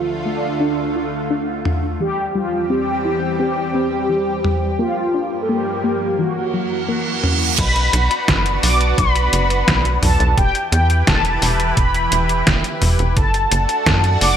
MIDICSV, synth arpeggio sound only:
0, 0, Header, 1, 2, 480
1, 0, Start_track
1, 0, Tempo, 697674
1, 1378, Time_signature, 4, 2, 24, 8
1, 9885, End_track
2, 0, Start_track
2, 0, Title_t, "Synth arpeggio sound"
2, 0, Program_c, 0, 84
2, 0, Note_on_c, 0, 53, 80
2, 76, Note_off_c, 0, 53, 0
2, 176, Note_on_c, 0, 57, 71
2, 260, Note_off_c, 0, 57, 0
2, 416, Note_on_c, 0, 62, 102
2, 500, Note_off_c, 0, 62, 0
2, 659, Note_on_c, 0, 65, 74
2, 796, Note_off_c, 0, 65, 0
2, 898, Note_on_c, 0, 62, 96
2, 981, Note_off_c, 0, 62, 0
2, 1138, Note_on_c, 0, 62, 71
2, 1345, Note_off_c, 0, 62, 0
2, 1378, Note_on_c, 0, 52, 81
2, 1516, Note_off_c, 0, 52, 0
2, 1618, Note_on_c, 0, 55, 75
2, 1701, Note_off_c, 0, 55, 0
2, 1857, Note_on_c, 0, 60, 99
2, 1941, Note_off_c, 0, 60, 0
2, 2097, Note_on_c, 0, 64, 75
2, 2235, Note_off_c, 0, 64, 0
2, 2337, Note_on_c, 0, 60, 97
2, 2420, Note_off_c, 0, 60, 0
2, 2576, Note_on_c, 0, 60, 73
2, 2784, Note_off_c, 0, 60, 0
2, 2817, Note_on_c, 0, 52, 73
2, 2955, Note_off_c, 0, 52, 0
2, 3057, Note_on_c, 0, 55, 70
2, 3141, Note_off_c, 0, 55, 0
2, 3297, Note_on_c, 0, 58, 94
2, 3380, Note_off_c, 0, 58, 0
2, 3538, Note_on_c, 0, 62, 74
2, 3676, Note_off_c, 0, 62, 0
2, 3778, Note_on_c, 0, 58, 99
2, 3861, Note_off_c, 0, 58, 0
2, 4017, Note_on_c, 0, 58, 72
2, 4225, Note_off_c, 0, 58, 0
2, 4258, Note_on_c, 0, 52, 82
2, 4396, Note_off_c, 0, 52, 0
2, 4498, Note_on_c, 0, 54, 72
2, 4581, Note_off_c, 0, 54, 0
2, 4737, Note_on_c, 0, 58, 96
2, 4820, Note_off_c, 0, 58, 0
2, 4978, Note_on_c, 0, 61, 73
2, 5116, Note_off_c, 0, 61, 0
2, 9885, End_track
0, 0, End_of_file